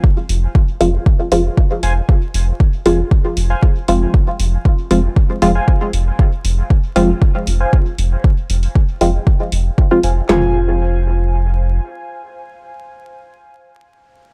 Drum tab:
HH |--o---o---o---o-|--o---o---o---o-|--o---o---o---o-|--o---o---o---o-|
CP |----------------|----------------|----------------|----------------|
SD |----------------|----------------|----------------|----------------|
FT |----------------|----------------|----------------|----------------|
BD |o---o---o---o---|o---o---o---o---|o---o---o---o---|o---o---o---o---|

HH |--oo--o---o---o-|----------------|----------------|
CP |----------------|x---------------|----------------|
SD |----------------|o---------------|----------------|
FT |----------------|o---------------|----------------|
BD |o---o---o---o---|----------------|----------------|